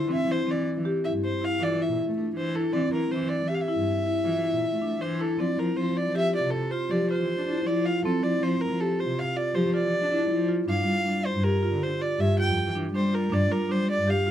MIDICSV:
0, 0, Header, 1, 4, 480
1, 0, Start_track
1, 0, Key_signature, -1, "major"
1, 0, Tempo, 378310
1, 108, Time_signature, 7, 2, 24, 8
1, 18155, End_track
2, 0, Start_track
2, 0, Title_t, "Violin"
2, 0, Program_c, 0, 40
2, 0, Note_on_c, 0, 72, 67
2, 132, Note_off_c, 0, 72, 0
2, 155, Note_on_c, 0, 76, 80
2, 399, Note_on_c, 0, 72, 71
2, 418, Note_off_c, 0, 76, 0
2, 644, Note_on_c, 0, 74, 60
2, 663, Note_off_c, 0, 72, 0
2, 858, Note_off_c, 0, 74, 0
2, 1326, Note_on_c, 0, 76, 69
2, 1432, Note_off_c, 0, 76, 0
2, 1573, Note_on_c, 0, 72, 74
2, 1830, Note_on_c, 0, 77, 86
2, 1849, Note_off_c, 0, 72, 0
2, 2070, Note_on_c, 0, 74, 74
2, 2089, Note_off_c, 0, 77, 0
2, 2304, Note_on_c, 0, 76, 63
2, 2323, Note_off_c, 0, 74, 0
2, 2530, Note_off_c, 0, 76, 0
2, 3009, Note_on_c, 0, 72, 66
2, 3241, Note_on_c, 0, 69, 63
2, 3260, Note_off_c, 0, 72, 0
2, 3462, Note_on_c, 0, 74, 68
2, 3481, Note_off_c, 0, 69, 0
2, 3706, Note_off_c, 0, 74, 0
2, 3713, Note_on_c, 0, 70, 71
2, 3949, Note_on_c, 0, 72, 65
2, 3968, Note_off_c, 0, 70, 0
2, 4175, Note_on_c, 0, 74, 72
2, 4194, Note_off_c, 0, 72, 0
2, 4412, Note_on_c, 0, 76, 70
2, 4431, Note_off_c, 0, 74, 0
2, 4496, Note_on_c, 0, 77, 61
2, 4515, Note_off_c, 0, 76, 0
2, 4581, Note_on_c, 0, 76, 74
2, 4600, Note_off_c, 0, 77, 0
2, 6359, Note_on_c, 0, 72, 62
2, 6379, Note_off_c, 0, 76, 0
2, 6609, Note_on_c, 0, 69, 63
2, 6628, Note_off_c, 0, 72, 0
2, 6854, Note_on_c, 0, 74, 71
2, 6873, Note_off_c, 0, 69, 0
2, 7092, Note_on_c, 0, 70, 70
2, 7112, Note_off_c, 0, 74, 0
2, 7317, Note_on_c, 0, 72, 71
2, 7336, Note_off_c, 0, 70, 0
2, 7572, Note_on_c, 0, 74, 77
2, 7591, Note_off_c, 0, 72, 0
2, 7808, Note_off_c, 0, 74, 0
2, 7826, Note_on_c, 0, 76, 79
2, 8039, Note_off_c, 0, 76, 0
2, 8055, Note_on_c, 0, 74, 65
2, 8258, Note_on_c, 0, 69, 67
2, 8277, Note_off_c, 0, 74, 0
2, 8508, Note_on_c, 0, 72, 74
2, 8527, Note_off_c, 0, 69, 0
2, 8767, Note_on_c, 0, 74, 66
2, 8786, Note_off_c, 0, 72, 0
2, 9005, Note_off_c, 0, 74, 0
2, 9013, Note_on_c, 0, 72, 76
2, 9726, Note_on_c, 0, 74, 69
2, 9745, Note_off_c, 0, 72, 0
2, 9966, Note_on_c, 0, 77, 69
2, 9985, Note_off_c, 0, 74, 0
2, 10200, Note_off_c, 0, 77, 0
2, 10208, Note_on_c, 0, 69, 69
2, 10446, Note_on_c, 0, 74, 73
2, 10465, Note_off_c, 0, 69, 0
2, 10690, Note_on_c, 0, 72, 68
2, 10709, Note_off_c, 0, 74, 0
2, 10921, Note_on_c, 0, 70, 81
2, 10940, Note_off_c, 0, 72, 0
2, 11170, Note_on_c, 0, 69, 70
2, 11189, Note_off_c, 0, 70, 0
2, 11415, Note_on_c, 0, 72, 73
2, 11434, Note_off_c, 0, 69, 0
2, 11658, Note_on_c, 0, 77, 76
2, 11677, Note_off_c, 0, 72, 0
2, 11881, Note_on_c, 0, 74, 78
2, 11900, Note_off_c, 0, 77, 0
2, 12117, Note_on_c, 0, 72, 69
2, 12136, Note_off_c, 0, 74, 0
2, 12351, Note_off_c, 0, 72, 0
2, 12359, Note_on_c, 0, 74, 81
2, 13266, Note_off_c, 0, 74, 0
2, 13566, Note_on_c, 0, 77, 92
2, 14282, Note_on_c, 0, 72, 79
2, 14301, Note_off_c, 0, 77, 0
2, 14514, Note_on_c, 0, 70, 79
2, 14533, Note_off_c, 0, 72, 0
2, 15010, Note_on_c, 0, 72, 77
2, 15029, Note_off_c, 0, 70, 0
2, 15247, Note_on_c, 0, 74, 77
2, 15266, Note_off_c, 0, 72, 0
2, 15481, Note_on_c, 0, 76, 81
2, 15500, Note_off_c, 0, 74, 0
2, 15706, Note_off_c, 0, 76, 0
2, 15714, Note_on_c, 0, 79, 85
2, 16158, Note_off_c, 0, 79, 0
2, 16441, Note_on_c, 0, 72, 79
2, 16678, Note_on_c, 0, 70, 75
2, 16697, Note_off_c, 0, 72, 0
2, 16916, Note_on_c, 0, 74, 84
2, 16935, Note_off_c, 0, 70, 0
2, 17149, Note_on_c, 0, 70, 74
2, 17169, Note_off_c, 0, 74, 0
2, 17398, Note_on_c, 0, 72, 84
2, 17417, Note_off_c, 0, 70, 0
2, 17632, Note_off_c, 0, 72, 0
2, 17637, Note_on_c, 0, 74, 90
2, 17883, Note_on_c, 0, 77, 88
2, 17902, Note_off_c, 0, 74, 0
2, 18155, Note_off_c, 0, 77, 0
2, 18155, End_track
3, 0, Start_track
3, 0, Title_t, "Marimba"
3, 0, Program_c, 1, 12
3, 115, Note_on_c, 1, 60, 83
3, 279, Note_off_c, 1, 60, 0
3, 350, Note_on_c, 1, 64, 53
3, 516, Note_off_c, 1, 64, 0
3, 594, Note_on_c, 1, 60, 62
3, 926, Note_off_c, 1, 60, 0
3, 1081, Note_on_c, 1, 67, 73
3, 1244, Note_off_c, 1, 67, 0
3, 1324, Note_on_c, 1, 64, 67
3, 1653, Note_off_c, 1, 64, 0
3, 1793, Note_on_c, 1, 64, 61
3, 1960, Note_off_c, 1, 64, 0
3, 2038, Note_on_c, 1, 65, 60
3, 2204, Note_off_c, 1, 65, 0
3, 2280, Note_on_c, 1, 64, 67
3, 2611, Note_off_c, 1, 64, 0
3, 2766, Note_on_c, 1, 62, 59
3, 2929, Note_off_c, 1, 62, 0
3, 3008, Note_on_c, 1, 62, 62
3, 3171, Note_off_c, 1, 62, 0
3, 3242, Note_on_c, 1, 64, 66
3, 3407, Note_off_c, 1, 64, 0
3, 3469, Note_on_c, 1, 60, 84
3, 3639, Note_off_c, 1, 60, 0
3, 3720, Note_on_c, 1, 64, 51
3, 3886, Note_off_c, 1, 64, 0
3, 3958, Note_on_c, 1, 60, 56
3, 4291, Note_off_c, 1, 60, 0
3, 4433, Note_on_c, 1, 67, 62
3, 4601, Note_off_c, 1, 67, 0
3, 4672, Note_on_c, 1, 64, 70
3, 5008, Note_off_c, 1, 64, 0
3, 5155, Note_on_c, 1, 64, 65
3, 5324, Note_off_c, 1, 64, 0
3, 5395, Note_on_c, 1, 65, 61
3, 5563, Note_off_c, 1, 65, 0
3, 5636, Note_on_c, 1, 64, 67
3, 5970, Note_off_c, 1, 64, 0
3, 6111, Note_on_c, 1, 62, 62
3, 6281, Note_off_c, 1, 62, 0
3, 6359, Note_on_c, 1, 62, 60
3, 6527, Note_off_c, 1, 62, 0
3, 6593, Note_on_c, 1, 64, 63
3, 6762, Note_off_c, 1, 64, 0
3, 6837, Note_on_c, 1, 60, 69
3, 7005, Note_off_c, 1, 60, 0
3, 7080, Note_on_c, 1, 64, 55
3, 7247, Note_off_c, 1, 64, 0
3, 7320, Note_on_c, 1, 60, 59
3, 7653, Note_off_c, 1, 60, 0
3, 7800, Note_on_c, 1, 67, 73
3, 7967, Note_off_c, 1, 67, 0
3, 8042, Note_on_c, 1, 65, 64
3, 8374, Note_off_c, 1, 65, 0
3, 8526, Note_on_c, 1, 65, 67
3, 8691, Note_off_c, 1, 65, 0
3, 8772, Note_on_c, 1, 67, 71
3, 8935, Note_off_c, 1, 67, 0
3, 9019, Note_on_c, 1, 65, 75
3, 9345, Note_off_c, 1, 65, 0
3, 9495, Note_on_c, 1, 64, 64
3, 9656, Note_off_c, 1, 64, 0
3, 9729, Note_on_c, 1, 64, 68
3, 9892, Note_off_c, 1, 64, 0
3, 9975, Note_on_c, 1, 65, 67
3, 10136, Note_off_c, 1, 65, 0
3, 10219, Note_on_c, 1, 60, 86
3, 10379, Note_off_c, 1, 60, 0
3, 10462, Note_on_c, 1, 64, 55
3, 10620, Note_off_c, 1, 64, 0
3, 10696, Note_on_c, 1, 60, 65
3, 11022, Note_off_c, 1, 60, 0
3, 11169, Note_on_c, 1, 67, 67
3, 11331, Note_off_c, 1, 67, 0
3, 11406, Note_on_c, 1, 65, 67
3, 11735, Note_off_c, 1, 65, 0
3, 11875, Note_on_c, 1, 65, 65
3, 12042, Note_off_c, 1, 65, 0
3, 12115, Note_on_c, 1, 67, 66
3, 12282, Note_off_c, 1, 67, 0
3, 12354, Note_on_c, 1, 65, 73
3, 12687, Note_off_c, 1, 65, 0
3, 12838, Note_on_c, 1, 64, 70
3, 13003, Note_off_c, 1, 64, 0
3, 13067, Note_on_c, 1, 64, 65
3, 13236, Note_off_c, 1, 64, 0
3, 13306, Note_on_c, 1, 65, 69
3, 13475, Note_off_c, 1, 65, 0
3, 13548, Note_on_c, 1, 62, 74
3, 13716, Note_off_c, 1, 62, 0
3, 13780, Note_on_c, 1, 65, 58
3, 13950, Note_off_c, 1, 65, 0
3, 14032, Note_on_c, 1, 62, 59
3, 14364, Note_off_c, 1, 62, 0
3, 14508, Note_on_c, 1, 67, 75
3, 14676, Note_off_c, 1, 67, 0
3, 14752, Note_on_c, 1, 65, 72
3, 15083, Note_off_c, 1, 65, 0
3, 15217, Note_on_c, 1, 65, 65
3, 15388, Note_off_c, 1, 65, 0
3, 15468, Note_on_c, 1, 67, 64
3, 15634, Note_off_c, 1, 67, 0
3, 15710, Note_on_c, 1, 65, 71
3, 16041, Note_off_c, 1, 65, 0
3, 16179, Note_on_c, 1, 62, 73
3, 16348, Note_off_c, 1, 62, 0
3, 16419, Note_on_c, 1, 62, 67
3, 16588, Note_off_c, 1, 62, 0
3, 16657, Note_on_c, 1, 65, 63
3, 16827, Note_off_c, 1, 65, 0
3, 16902, Note_on_c, 1, 62, 86
3, 17070, Note_off_c, 1, 62, 0
3, 17146, Note_on_c, 1, 65, 66
3, 17312, Note_off_c, 1, 65, 0
3, 17375, Note_on_c, 1, 62, 65
3, 17710, Note_off_c, 1, 62, 0
3, 17858, Note_on_c, 1, 67, 72
3, 18026, Note_off_c, 1, 67, 0
3, 18102, Note_on_c, 1, 65, 74
3, 18155, Note_off_c, 1, 65, 0
3, 18155, End_track
4, 0, Start_track
4, 0, Title_t, "Cello"
4, 0, Program_c, 2, 42
4, 95, Note_on_c, 2, 52, 84
4, 201, Note_off_c, 2, 52, 0
4, 339, Note_on_c, 2, 52, 65
4, 544, Note_off_c, 2, 52, 0
4, 589, Note_on_c, 2, 52, 86
4, 790, Note_off_c, 2, 52, 0
4, 945, Note_on_c, 2, 52, 70
4, 1349, Note_off_c, 2, 52, 0
4, 1430, Note_on_c, 2, 43, 62
4, 1632, Note_off_c, 2, 43, 0
4, 2024, Note_on_c, 2, 52, 88
4, 2230, Note_off_c, 2, 52, 0
4, 2398, Note_on_c, 2, 46, 69
4, 2598, Note_off_c, 2, 46, 0
4, 2629, Note_on_c, 2, 57, 76
4, 2732, Note_off_c, 2, 57, 0
4, 2755, Note_on_c, 2, 57, 71
4, 2957, Note_off_c, 2, 57, 0
4, 2994, Note_on_c, 2, 52, 82
4, 3397, Note_off_c, 2, 52, 0
4, 3472, Note_on_c, 2, 52, 90
4, 3575, Note_off_c, 2, 52, 0
4, 3707, Note_on_c, 2, 52, 69
4, 3913, Note_off_c, 2, 52, 0
4, 3941, Note_on_c, 2, 52, 93
4, 4150, Note_off_c, 2, 52, 0
4, 4308, Note_on_c, 2, 52, 65
4, 4715, Note_off_c, 2, 52, 0
4, 4786, Note_on_c, 2, 43, 69
4, 4993, Note_off_c, 2, 43, 0
4, 5384, Note_on_c, 2, 52, 79
4, 5592, Note_off_c, 2, 52, 0
4, 5748, Note_on_c, 2, 46, 68
4, 5954, Note_off_c, 2, 46, 0
4, 5997, Note_on_c, 2, 57, 64
4, 6100, Note_off_c, 2, 57, 0
4, 6125, Note_on_c, 2, 57, 69
4, 6324, Note_off_c, 2, 57, 0
4, 6353, Note_on_c, 2, 52, 84
4, 6758, Note_off_c, 2, 52, 0
4, 6839, Note_on_c, 2, 53, 76
4, 6941, Note_off_c, 2, 53, 0
4, 7083, Note_on_c, 2, 53, 69
4, 7284, Note_off_c, 2, 53, 0
4, 7328, Note_on_c, 2, 53, 84
4, 7526, Note_off_c, 2, 53, 0
4, 7694, Note_on_c, 2, 53, 67
4, 8090, Note_off_c, 2, 53, 0
4, 8160, Note_on_c, 2, 48, 73
4, 8362, Note_off_c, 2, 48, 0
4, 8746, Note_on_c, 2, 53, 87
4, 8954, Note_off_c, 2, 53, 0
4, 9122, Note_on_c, 2, 52, 63
4, 9323, Note_off_c, 2, 52, 0
4, 9357, Note_on_c, 2, 62, 70
4, 9460, Note_off_c, 2, 62, 0
4, 9481, Note_on_c, 2, 62, 76
4, 9681, Note_off_c, 2, 62, 0
4, 9710, Note_on_c, 2, 53, 79
4, 10115, Note_off_c, 2, 53, 0
4, 10199, Note_on_c, 2, 53, 74
4, 10300, Note_off_c, 2, 53, 0
4, 10435, Note_on_c, 2, 53, 71
4, 10638, Note_off_c, 2, 53, 0
4, 10668, Note_on_c, 2, 53, 91
4, 10874, Note_off_c, 2, 53, 0
4, 11020, Note_on_c, 2, 53, 75
4, 11428, Note_off_c, 2, 53, 0
4, 11509, Note_on_c, 2, 48, 67
4, 11714, Note_off_c, 2, 48, 0
4, 12107, Note_on_c, 2, 53, 96
4, 12312, Note_off_c, 2, 53, 0
4, 12469, Note_on_c, 2, 52, 62
4, 12673, Note_off_c, 2, 52, 0
4, 12709, Note_on_c, 2, 62, 76
4, 12812, Note_off_c, 2, 62, 0
4, 12826, Note_on_c, 2, 62, 73
4, 13031, Note_off_c, 2, 62, 0
4, 13069, Note_on_c, 2, 53, 89
4, 13472, Note_off_c, 2, 53, 0
4, 13537, Note_on_c, 2, 43, 86
4, 13645, Note_off_c, 2, 43, 0
4, 13778, Note_on_c, 2, 55, 80
4, 13985, Note_off_c, 2, 55, 0
4, 14025, Note_on_c, 2, 55, 89
4, 14229, Note_off_c, 2, 55, 0
4, 14383, Note_on_c, 2, 43, 75
4, 14787, Note_off_c, 2, 43, 0
4, 14865, Note_on_c, 2, 50, 71
4, 15068, Note_off_c, 2, 50, 0
4, 15464, Note_on_c, 2, 43, 89
4, 15667, Note_off_c, 2, 43, 0
4, 15829, Note_on_c, 2, 41, 71
4, 16030, Note_off_c, 2, 41, 0
4, 16064, Note_on_c, 2, 52, 75
4, 16166, Note_off_c, 2, 52, 0
4, 16181, Note_on_c, 2, 52, 76
4, 16384, Note_off_c, 2, 52, 0
4, 16407, Note_on_c, 2, 55, 95
4, 16816, Note_off_c, 2, 55, 0
4, 16902, Note_on_c, 2, 43, 97
4, 17004, Note_off_c, 2, 43, 0
4, 17133, Note_on_c, 2, 55, 77
4, 17339, Note_off_c, 2, 55, 0
4, 17365, Note_on_c, 2, 55, 95
4, 17574, Note_off_c, 2, 55, 0
4, 17729, Note_on_c, 2, 43, 72
4, 18136, Note_off_c, 2, 43, 0
4, 18155, End_track
0, 0, End_of_file